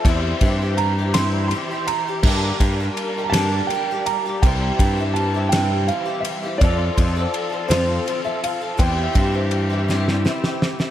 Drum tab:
CC |------------|x-----------|------------|------------|
RD |x-x-x-x-x-x-|--x-x-x-x-x-|x-x-x-x-x-x-|x-x-x-x-x-x-|
SD |------o-----|------o-----|------o-----|------o-----|
BD |o-o---------|o-o---------|o-o---------|o-o---------|

CC |------------|
RD |x-x-x-------|
SD |------oooooo|
BD |o-o---------|